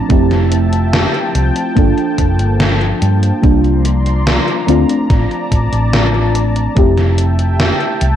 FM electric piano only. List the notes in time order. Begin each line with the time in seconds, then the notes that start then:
Already playing: A3 C4 D4 F4
0.09 A3 C4 E4 G4
1.75 A#3 D4 F4 A4
3.42 G3 A#3 D4 F4
4.67 A3 C4 D4 F4
6.75 A3 C4 E4 G4